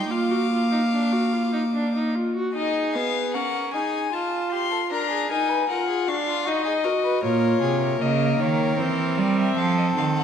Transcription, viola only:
0, 0, Header, 1, 2, 480
1, 0, Start_track
1, 0, Key_signature, -6, "minor"
1, 0, Tempo, 814111
1, 60, Time_signature, 3, 2, 24, 8
1, 1499, Tempo, 792602
1, 2459, Tempo, 778210
1, 6227, End_track
2, 0, Start_track
2, 0, Title_t, "Viola"
2, 0, Program_c, 0, 41
2, 0, Note_on_c, 0, 63, 60
2, 60, Note_on_c, 0, 65, 64
2, 69, Note_off_c, 0, 63, 0
2, 183, Note_on_c, 0, 66, 58
2, 192, Note_off_c, 0, 65, 0
2, 300, Note_off_c, 0, 66, 0
2, 304, Note_on_c, 0, 65, 60
2, 419, Note_off_c, 0, 65, 0
2, 423, Note_on_c, 0, 63, 54
2, 470, Note_off_c, 0, 63, 0
2, 542, Note_on_c, 0, 62, 57
2, 662, Note_on_c, 0, 66, 52
2, 671, Note_off_c, 0, 62, 0
2, 784, Note_on_c, 0, 65, 60
2, 793, Note_off_c, 0, 66, 0
2, 899, Note_off_c, 0, 65, 0
2, 903, Note_on_c, 0, 63, 58
2, 950, Note_off_c, 0, 63, 0
2, 1026, Note_on_c, 0, 62, 55
2, 1140, Note_off_c, 0, 62, 0
2, 1148, Note_on_c, 0, 63, 51
2, 1268, Note_on_c, 0, 65, 52
2, 1277, Note_off_c, 0, 63, 0
2, 1384, Note_off_c, 0, 65, 0
2, 1389, Note_on_c, 0, 66, 54
2, 1501, Note_off_c, 0, 66, 0
2, 1509, Note_on_c, 0, 63, 71
2, 1747, Note_on_c, 0, 59, 64
2, 1756, Note_off_c, 0, 63, 0
2, 1986, Note_on_c, 0, 61, 67
2, 1995, Note_off_c, 0, 59, 0
2, 2221, Note_on_c, 0, 63, 61
2, 2230, Note_off_c, 0, 61, 0
2, 2454, Note_off_c, 0, 63, 0
2, 2458, Note_on_c, 0, 65, 64
2, 2942, Note_on_c, 0, 62, 69
2, 2951, Note_off_c, 0, 65, 0
2, 3182, Note_off_c, 0, 62, 0
2, 3186, Note_on_c, 0, 63, 66
2, 3419, Note_off_c, 0, 63, 0
2, 3428, Note_on_c, 0, 65, 65
2, 3663, Note_on_c, 0, 62, 75
2, 3672, Note_off_c, 0, 65, 0
2, 3902, Note_on_c, 0, 63, 70
2, 3911, Note_off_c, 0, 62, 0
2, 4135, Note_on_c, 0, 66, 67
2, 4144, Note_off_c, 0, 63, 0
2, 4370, Note_off_c, 0, 66, 0
2, 4374, Note_on_c, 0, 65, 75
2, 4843, Note_off_c, 0, 65, 0
2, 4851, Note_on_c, 0, 58, 72
2, 5323, Note_off_c, 0, 58, 0
2, 5330, Note_on_c, 0, 60, 76
2, 6227, Note_off_c, 0, 60, 0
2, 6227, End_track
0, 0, End_of_file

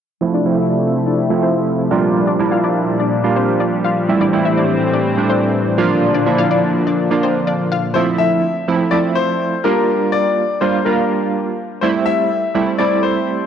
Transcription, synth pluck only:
0, 0, Header, 1, 2, 480
1, 0, Start_track
1, 0, Key_signature, -1, "major"
1, 0, Tempo, 483871
1, 213, Time_signature, 4, 2, 24, 8
1, 13356, End_track
2, 0, Start_track
2, 0, Title_t, "Synth pluck"
2, 0, Program_c, 0, 84
2, 335, Note_on_c, 0, 74, 87
2, 341, Note_on_c, 0, 62, 65
2, 420, Note_off_c, 0, 74, 0
2, 425, Note_off_c, 0, 62, 0
2, 570, Note_on_c, 0, 76, 79
2, 579, Note_on_c, 0, 64, 59
2, 657, Note_off_c, 0, 76, 0
2, 663, Note_off_c, 0, 64, 0
2, 691, Note_on_c, 0, 74, 66
2, 698, Note_on_c, 0, 62, 54
2, 778, Note_off_c, 0, 74, 0
2, 783, Note_off_c, 0, 62, 0
2, 1053, Note_on_c, 0, 74, 70
2, 1060, Note_on_c, 0, 62, 54
2, 1139, Note_off_c, 0, 74, 0
2, 1144, Note_off_c, 0, 62, 0
2, 1414, Note_on_c, 0, 72, 83
2, 1422, Note_on_c, 0, 60, 62
2, 1586, Note_off_c, 0, 72, 0
2, 1591, Note_off_c, 0, 60, 0
2, 2254, Note_on_c, 0, 74, 77
2, 2260, Note_on_c, 0, 62, 59
2, 2340, Note_off_c, 0, 74, 0
2, 2344, Note_off_c, 0, 62, 0
2, 2496, Note_on_c, 0, 77, 83
2, 2504, Note_on_c, 0, 65, 62
2, 2581, Note_off_c, 0, 77, 0
2, 2586, Note_off_c, 0, 65, 0
2, 2615, Note_on_c, 0, 74, 82
2, 2623, Note_on_c, 0, 62, 66
2, 2700, Note_off_c, 0, 74, 0
2, 2706, Note_off_c, 0, 62, 0
2, 2974, Note_on_c, 0, 74, 71
2, 2984, Note_on_c, 0, 62, 54
2, 3060, Note_off_c, 0, 74, 0
2, 3066, Note_off_c, 0, 62, 0
2, 3337, Note_on_c, 0, 72, 82
2, 3344, Note_on_c, 0, 60, 64
2, 3508, Note_off_c, 0, 72, 0
2, 3512, Note_off_c, 0, 60, 0
2, 3573, Note_on_c, 0, 74, 77
2, 3581, Note_on_c, 0, 62, 60
2, 3659, Note_off_c, 0, 74, 0
2, 3664, Note_off_c, 0, 62, 0
2, 3813, Note_on_c, 0, 77, 81
2, 3821, Note_on_c, 0, 65, 64
2, 3899, Note_off_c, 0, 77, 0
2, 3905, Note_off_c, 0, 65, 0
2, 4174, Note_on_c, 0, 74, 90
2, 4181, Note_on_c, 0, 62, 66
2, 4260, Note_off_c, 0, 74, 0
2, 4264, Note_off_c, 0, 62, 0
2, 4415, Note_on_c, 0, 76, 75
2, 4424, Note_on_c, 0, 64, 60
2, 4500, Note_off_c, 0, 76, 0
2, 4506, Note_off_c, 0, 64, 0
2, 4536, Note_on_c, 0, 74, 69
2, 4544, Note_on_c, 0, 62, 52
2, 4621, Note_off_c, 0, 74, 0
2, 4626, Note_off_c, 0, 62, 0
2, 4894, Note_on_c, 0, 74, 69
2, 4904, Note_on_c, 0, 62, 57
2, 4980, Note_off_c, 0, 74, 0
2, 4986, Note_off_c, 0, 62, 0
2, 5254, Note_on_c, 0, 72, 81
2, 5261, Note_on_c, 0, 60, 62
2, 5426, Note_off_c, 0, 72, 0
2, 5430, Note_off_c, 0, 60, 0
2, 6094, Note_on_c, 0, 74, 75
2, 6103, Note_on_c, 0, 62, 59
2, 6180, Note_off_c, 0, 74, 0
2, 6185, Note_off_c, 0, 62, 0
2, 6332, Note_on_c, 0, 77, 83
2, 6341, Note_on_c, 0, 65, 65
2, 6418, Note_off_c, 0, 77, 0
2, 6424, Note_off_c, 0, 65, 0
2, 6455, Note_on_c, 0, 74, 78
2, 6464, Note_on_c, 0, 62, 63
2, 6541, Note_off_c, 0, 74, 0
2, 6546, Note_off_c, 0, 62, 0
2, 6813, Note_on_c, 0, 74, 70
2, 6821, Note_on_c, 0, 62, 57
2, 6899, Note_off_c, 0, 74, 0
2, 6905, Note_off_c, 0, 62, 0
2, 7174, Note_on_c, 0, 72, 82
2, 7183, Note_on_c, 0, 60, 64
2, 7346, Note_off_c, 0, 72, 0
2, 7352, Note_off_c, 0, 60, 0
2, 7413, Note_on_c, 0, 74, 77
2, 7421, Note_on_c, 0, 62, 60
2, 7499, Note_off_c, 0, 74, 0
2, 7504, Note_off_c, 0, 62, 0
2, 7656, Note_on_c, 0, 77, 82
2, 7664, Note_on_c, 0, 65, 65
2, 7741, Note_off_c, 0, 77, 0
2, 7746, Note_off_c, 0, 65, 0
2, 13356, End_track
0, 0, End_of_file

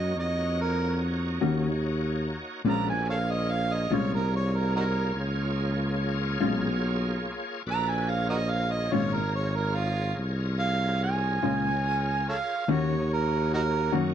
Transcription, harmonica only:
0, 0, Header, 1, 2, 480
1, 0, Start_track
1, 0, Key_signature, -5, "minor"
1, 0, Tempo, 835073
1, 1532, Time_signature, 12, 3, 24, 8
1, 8128, End_track
2, 0, Start_track
2, 0, Title_t, "Harmonica"
2, 0, Program_c, 0, 22
2, 0, Note_on_c, 0, 75, 84
2, 96, Note_off_c, 0, 75, 0
2, 110, Note_on_c, 0, 75, 82
2, 334, Note_off_c, 0, 75, 0
2, 351, Note_on_c, 0, 70, 84
2, 575, Note_off_c, 0, 70, 0
2, 1548, Note_on_c, 0, 82, 108
2, 1652, Note_off_c, 0, 82, 0
2, 1664, Note_on_c, 0, 80, 85
2, 1770, Note_off_c, 0, 80, 0
2, 1781, Note_on_c, 0, 69, 55
2, 1781, Note_on_c, 0, 73, 55
2, 1781, Note_on_c, 0, 77, 79
2, 1816, Note_off_c, 0, 73, 0
2, 1822, Note_off_c, 0, 69, 0
2, 1902, Note_on_c, 0, 75, 89
2, 1911, Note_off_c, 0, 77, 0
2, 2018, Note_on_c, 0, 77, 88
2, 2027, Note_off_c, 0, 75, 0
2, 2144, Note_on_c, 0, 75, 83
2, 2152, Note_off_c, 0, 77, 0
2, 2264, Note_on_c, 0, 73, 77
2, 2273, Note_off_c, 0, 75, 0
2, 2370, Note_off_c, 0, 73, 0
2, 2382, Note_on_c, 0, 70, 77
2, 2489, Note_off_c, 0, 70, 0
2, 2507, Note_on_c, 0, 73, 77
2, 2623, Note_on_c, 0, 70, 71
2, 2632, Note_off_c, 0, 73, 0
2, 2730, Note_off_c, 0, 70, 0
2, 2736, Note_on_c, 0, 63, 62
2, 2736, Note_on_c, 0, 66, 62
2, 2736, Note_on_c, 0, 70, 89
2, 2781, Note_off_c, 0, 63, 0
2, 2781, Note_off_c, 0, 66, 0
2, 2967, Note_off_c, 0, 70, 0
2, 4429, Note_on_c, 0, 82, 104
2, 4541, Note_on_c, 0, 80, 90
2, 4549, Note_off_c, 0, 82, 0
2, 4655, Note_on_c, 0, 77, 76
2, 4664, Note_off_c, 0, 80, 0
2, 4766, Note_off_c, 0, 77, 0
2, 4769, Note_on_c, 0, 66, 59
2, 4769, Note_on_c, 0, 70, 59
2, 4769, Note_on_c, 0, 75, 84
2, 4807, Note_off_c, 0, 70, 0
2, 4818, Note_off_c, 0, 66, 0
2, 4890, Note_on_c, 0, 77, 88
2, 4899, Note_off_c, 0, 75, 0
2, 5007, Note_on_c, 0, 75, 80
2, 5016, Note_off_c, 0, 77, 0
2, 5132, Note_on_c, 0, 73, 81
2, 5141, Note_off_c, 0, 75, 0
2, 5252, Note_on_c, 0, 70, 83
2, 5260, Note_off_c, 0, 73, 0
2, 5364, Note_off_c, 0, 70, 0
2, 5376, Note_on_c, 0, 73, 80
2, 5491, Note_on_c, 0, 70, 76
2, 5500, Note_off_c, 0, 73, 0
2, 5609, Note_on_c, 0, 65, 90
2, 5617, Note_off_c, 0, 70, 0
2, 5844, Note_off_c, 0, 65, 0
2, 6088, Note_on_c, 0, 77, 98
2, 6324, Note_off_c, 0, 77, 0
2, 6345, Note_on_c, 0, 80, 104
2, 7038, Note_off_c, 0, 80, 0
2, 7063, Note_on_c, 0, 69, 60
2, 7063, Note_on_c, 0, 73, 60
2, 7063, Note_on_c, 0, 77, 85
2, 7105, Note_off_c, 0, 73, 0
2, 7109, Note_off_c, 0, 69, 0
2, 7300, Note_on_c, 0, 73, 83
2, 7309, Note_off_c, 0, 77, 0
2, 7530, Note_off_c, 0, 73, 0
2, 7547, Note_on_c, 0, 70, 92
2, 7774, Note_off_c, 0, 70, 0
2, 7782, Note_on_c, 0, 63, 75
2, 7782, Note_on_c, 0, 66, 75
2, 7782, Note_on_c, 0, 70, 108
2, 7819, Note_off_c, 0, 63, 0
2, 7833, Note_off_c, 0, 66, 0
2, 8011, Note_off_c, 0, 70, 0
2, 8128, End_track
0, 0, End_of_file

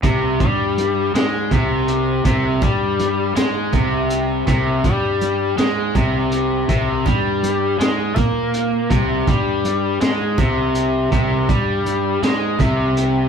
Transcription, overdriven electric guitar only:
0, 0, Header, 1, 2, 480
1, 0, Start_track
1, 0, Tempo, 738916
1, 22, Time_signature, 6, 3, 24, 8
1, 8631, End_track
2, 0, Start_track
2, 0, Title_t, "Overdriven electric guitar"
2, 0, Program_c, 0, 29
2, 27, Note_on_c, 0, 48, 110
2, 257, Note_off_c, 0, 48, 0
2, 264, Note_on_c, 0, 55, 92
2, 736, Note_off_c, 0, 55, 0
2, 745, Note_on_c, 0, 56, 99
2, 977, Note_off_c, 0, 56, 0
2, 988, Note_on_c, 0, 48, 106
2, 1455, Note_off_c, 0, 48, 0
2, 1463, Note_on_c, 0, 48, 110
2, 1696, Note_off_c, 0, 48, 0
2, 1705, Note_on_c, 0, 55, 89
2, 2177, Note_off_c, 0, 55, 0
2, 2182, Note_on_c, 0, 56, 100
2, 2416, Note_off_c, 0, 56, 0
2, 2425, Note_on_c, 0, 48, 97
2, 2898, Note_off_c, 0, 48, 0
2, 2907, Note_on_c, 0, 48, 98
2, 3138, Note_off_c, 0, 48, 0
2, 3148, Note_on_c, 0, 55, 91
2, 3619, Note_off_c, 0, 55, 0
2, 3622, Note_on_c, 0, 56, 107
2, 3856, Note_off_c, 0, 56, 0
2, 3864, Note_on_c, 0, 48, 107
2, 4337, Note_off_c, 0, 48, 0
2, 4345, Note_on_c, 0, 48, 104
2, 4577, Note_off_c, 0, 48, 0
2, 4582, Note_on_c, 0, 55, 95
2, 5056, Note_off_c, 0, 55, 0
2, 5064, Note_on_c, 0, 56, 110
2, 5305, Note_off_c, 0, 56, 0
2, 5305, Note_on_c, 0, 58, 102
2, 5778, Note_off_c, 0, 58, 0
2, 5782, Note_on_c, 0, 48, 104
2, 6016, Note_off_c, 0, 48, 0
2, 6028, Note_on_c, 0, 55, 95
2, 6499, Note_off_c, 0, 55, 0
2, 6505, Note_on_c, 0, 56, 101
2, 6738, Note_off_c, 0, 56, 0
2, 6747, Note_on_c, 0, 48, 97
2, 7219, Note_off_c, 0, 48, 0
2, 7227, Note_on_c, 0, 48, 97
2, 7459, Note_off_c, 0, 48, 0
2, 7464, Note_on_c, 0, 55, 89
2, 7937, Note_off_c, 0, 55, 0
2, 7947, Note_on_c, 0, 56, 102
2, 8179, Note_off_c, 0, 56, 0
2, 8186, Note_on_c, 0, 48, 113
2, 8631, Note_off_c, 0, 48, 0
2, 8631, End_track
0, 0, End_of_file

